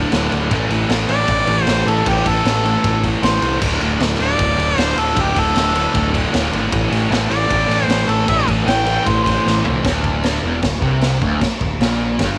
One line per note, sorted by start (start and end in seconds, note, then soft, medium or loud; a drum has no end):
0.00 0.11 D2 medium
0.00 0.11 A2 medium
0.00 0.11 D3 medium
0.12 0.28 D1 medium
0.12 0.30 D2 medium
0.12 0.31 A2 loud
0.12 0.32 D3 loud
0.12 snare loud
0.12 ride loud
0.31 0.47 D1 medium
0.31 0.50 D2 loud
0.31 0.50 A2 medium
0.31 0.51 D3 loud
0.31 ride medium
0.51 0.66 A1 medium
0.51 0.70 A2 medium
0.51 0.71 E3 loud
0.51 0.72 A3 loud
0.51 kick loud
0.51 ride loud
0.69 0.85 A1 medium
0.69 0.88 A2 medium
0.69 0.89 E3 loud
0.69 0.90 A3 medium
0.69 ride medium
0.89 1.05 A1 loud
0.89 1.08 A2 medium
0.89 1.08 E3 medium
0.89 1.10 A3 loud
0.89 snare loud
0.89 ride loud
1.08 1.24 A1 medium
1.08 1.27 A2 medium
1.08 1.28 E3 medium
1.08 1.30 A3 medium
1.08 1.63 D5 loud
1.08 ride medium
1.27 1.44 A1 loud
1.27 1.46 A2 loud
1.27 1.47 E3 loud
1.27 1.48 A3 loud
1.27 kick loud
1.27 ride loud
1.47 1.63 A1 loud
1.47 1.66 A2 medium
1.47 1.68 E3 medium
1.47 1.69 A3 medium
1.47 ride medium
1.63 1.82 A1 medium
1.63 1.90 C5 loud
1.63 ride loud
1.68 1.86 A2 loud
1.68 1.87 E3 loud
1.68 1.88 A3 loud
1.68 snare loud
1.86 2.02 A1 medium
1.86 2.05 A2 medium
1.86 2.06 E3 medium
1.86 2.07 A3 loud
1.86 2.10 A4 medium
1.86 ride medium
2.06 2.22 A1 medium
2.06 2.24 A2 loud
2.06 2.25 E3 medium
2.06 2.27 A3 loud
2.06 2.30 G4 loud
2.06 kick loud
2.06 ride loud
2.25 2.41 A1 loud
2.25 2.43 A2 loud
2.25 2.44 E3 loud
2.25 2.45 A3 loud
2.25 3.02 A4 loud
2.25 kick medium
2.25 ride medium
2.44 2.76 A1 loud
2.44 2.63 A2 medium
2.44 2.64 E3 medium
2.44 2.65 A3 loud
2.44 snare loud
2.44 ride loud
2.64 2.83 A2 medium
2.64 2.84 E3 medium
2.64 2.85 A3 medium
2.64 ride medium
2.84 3.15 A1 medium
2.84 3.03 A2 loud
2.84 3.04 E3 loud
2.84 3.05 A3 loud
2.84 kick loud
2.84 ride medium
3.04 3.21 A2 medium
3.04 3.23 E3 medium
3.04 3.24 A3 medium
3.04 kick medium
3.04 ride medium
3.22 3.38 A1 medium
3.22 3.41 A2 medium
3.22 3.42 E3 medium
3.22 3.43 A3 loud
3.22 3.61 C5 loud
3.22 snare loud
3.22 ride loud
3.41 3.57 C2 medium
3.41 3.61 A2 medium
3.41 3.61 E3 loud
3.41 3.63 A3 loud
3.41 ride medium
3.61 3.77 D1 loud
3.61 3.80 D2 medium
3.61 3.80 A2 medium
3.61 3.82 D3 medium
3.61 kick loud
3.61 crash loud
3.80 3.96 D1 medium
3.80 3.99 D2 loud
3.80 3.99 A2 loud
3.80 4.00 D3 medium
3.80 ride medium
3.99 4.15 D1 loud
3.99 4.17 D2 medium
3.99 4.17 A2 loud
3.99 4.19 D3 loud
3.99 snare loud
3.99 ride loud
4.17 4.34 D1 medium
4.17 4.36 D2 medium
4.17 4.37 A2 medium
4.17 4.38 D3 medium
4.17 ride medium
4.22 4.79 D5 loud
4.37 4.54 D1 loud
4.37 4.55 D2 loud
4.37 4.57 A2 loud
4.37 4.57 D3 loud
4.37 kick loud
4.37 ride medium
4.57 4.73 D1 loud
4.57 4.74 D2 medium
4.57 4.75 A2 medium
4.57 4.76 D3 medium
4.57 ride medium
4.75 4.93 D1 loud
4.75 4.94 D2 loud
4.75 4.95 A2 loud
4.75 4.96 D3 loud
4.75 5.01 C5 loud
4.75 snare loud
4.75 ride loud
4.95 5.12 D1 medium
4.95 5.14 D2 medium
4.95 5.15 A2 loud
4.95 5.16 D3 loud
4.95 5.23 A4 loud
4.95 ride medium
5.15 5.32 D1 medium
5.15 5.34 D2 medium
5.15 5.34 A2 medium
5.15 5.35 D3 loud
5.15 kick loud
5.15 ride loud
5.21 5.41 G4 loud
5.35 5.52 D1 loud
5.35 5.54 D2 medium
5.35 5.55 A2 loud
5.35 5.55 D3 loud
5.35 kick medium
5.35 ride medium
5.39 6.13 A4 loud
5.55 5.86 D1 loud
5.55 5.72 D2 medium
5.55 5.73 A2 medium
5.55 5.74 D3 loud
5.55 snare loud
5.55 ride loud
5.74 5.92 D2 medium
5.74 5.93 A2 medium
5.74 5.93 D3 medium
5.74 ride medium
5.93 6.25 D1 medium
5.93 6.11 D2 loud
5.93 6.12 A2 loud
5.93 6.14 D3 loud
5.93 kick loud
5.93 ride loud
6.13 6.30 D2 medium
6.13 6.31 A2 medium
6.13 6.32 D3 loud
6.13 kick medium
6.13 ride medium
6.31 6.49 D1 medium
6.31 6.50 D2 medium
6.31 6.51 A2 medium
6.31 6.51 D3 loud
6.31 snare loud
6.31 ride loud
6.52 6.68 G#1 medium
6.52 6.71 D2 medium
6.52 6.70 A2 loud
6.52 6.71 D3 medium
6.52 ride medium
6.71 6.88 A1 medium
6.71 6.89 A2 medium
6.71 6.91 E3 medium
6.71 6.91 A3 medium
6.71 kick loud
6.71 ride loud
6.90 7.07 A1 medium
6.90 7.09 A2 medium
6.90 7.10 E3 loud
6.90 7.11 A3 loud
6.90 ride medium
7.10 7.26 A1 loud
7.10 7.29 A2 medium
7.10 7.29 E3 medium
7.10 7.31 A3 loud
7.10 snare loud
7.10 ride loud
7.29 7.46 A1 medium
7.29 7.46 A2 medium
7.29 7.47 E3 loud
7.29 7.49 A3 medium
7.29 7.84 D5 loud
7.29 ride medium
7.47 7.66 A1 loud
7.47 7.66 A2 loud
7.47 7.67 E3 loud
7.47 7.68 A3 loud
7.47 kick loud
7.47 ride loud
7.67 7.84 A1 loud
7.67 7.86 A2 medium
7.67 7.87 E3 medium
7.67 7.88 A3 medium
7.71 ride medium
7.84 8.04 A1 medium
7.84 8.05 A2 loud
7.84 8.12 C5 loud
7.89 8.06 E3 medium
7.89 8.07 A3 loud
7.89 snare loud
7.89 ride loud
8.06 8.24 A1 medium
8.06 8.25 A2 loud
8.06 8.26 E3 medium
8.06 8.27 A3 loud
8.06 ride medium
8.11 8.28 A4 medium
8.27 8.44 A1 loud
8.27 8.45 A2 medium
8.27 8.46 E3 medium
8.27 8.46 A3 loud
8.27 8.48 E5 loud
8.27 kick loud
8.27 ride loud
8.46 8.63 A1 medium
8.46 8.64 A2 medium
8.46 8.65 E3 loud
8.46 8.66 A3 loud
8.46 kick medium
8.46 ride medium
8.65 8.97 A1 loud
8.65 8.84 A2 medium
8.65 8.85 E3 medium
8.65 8.85 A3 loud
8.65 9.09 G5 loud
8.65 snare loud
8.65 ride loud
8.85 9.04 A2 medium
8.85 9.05 E3 medium
8.85 9.06 A3 loud
8.85 ride medium
9.05 9.37 A1 medium
9.05 9.23 A2 loud
9.05 9.24 E3 loud
9.05 9.25 A3 loud
9.05 9.23 C5 loud
9.05 kick loud
9.05 ride loud
9.23 9.43 A2 medium
9.23 9.44 E3 loud
9.23 9.45 A3 loud
9.23 9.62 C5 loud
9.23 kick medium
9.23 ride medium
9.45 9.61 A1 medium
9.45 9.63 A2 loud
9.45 9.64 E3 loud
9.45 9.65 A3 loud
9.45 snare medium
9.65 9.80 C2 medium
9.65 9.83 A2 medium
9.65 9.83 E3 medium
9.65 9.84 A3 medium
9.65 floor tom loud
9.84 10.39 D1 medium
9.84 10.42 D2 loud
9.84 kick loud
9.84 snare loud
9.84 crash medium
10.04 kick medium
10.23 snare loud
10.23 crash medium
10.43 10.61 E1 medium
10.43 10.62 E2 loud
10.62 10.81 D1 medium
10.62 10.78 D2 medium
10.62 kick loud
10.62 snare loud
10.62 crash medium
10.81 11.18 C2 loud
10.81 11.20 C3 medium
10.81 kick medium
11.01 snare loud
11.01 crash medium
11.21 11.40 D1 medium
11.21 11.40 D2 loud
11.21 kick medium
11.41 muted picked electric bass stroke soft
11.41 muted distorted electric guitar stroke medium
11.41 kick loud
11.41 snare loud
11.41 crash medium
11.61 11.79 D1 medium
11.61 11.77 D2 medium
11.61 kick medium
11.80 12.16 A#1 medium
11.80 12.19 A#2 loud
11.80 snare loud
11.80 crash medium
12.19 12.38 G1 loud
12.19 12.38 G2 loud
12.19 kick loud
12.19 snare loud
12.19 crash medium